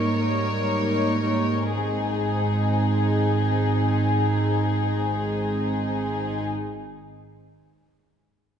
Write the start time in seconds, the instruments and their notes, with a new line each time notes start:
Already playing: cello section G#2, viola section G3 A#3, violin section D#4 A#4 C#5
0.17 viola section G3 A#3, violin section D#4 A#4
0.70 cello section G#2
1.22 viola section G3 A#3, violin section D#4 A#4
1.72 double bass section G#1, viola section G#3, violin section G#4
1.76 cello section G#2, viola section C4, violin section D#4 G#4